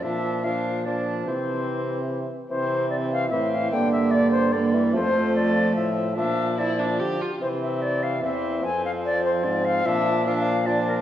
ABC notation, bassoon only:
X:1
M:3/4
L:1/8
Q:1/4=147
K:Cmix
V:1 name="Bassoon" clef=bass
F,2 F,2 F,2 | E,4- E, z | E,4 E,2 | D,4 D, E, |
F,6 | F,2 F,3 z | E,4 E,2 | F,6 |
F,2 F,2 F,2 |]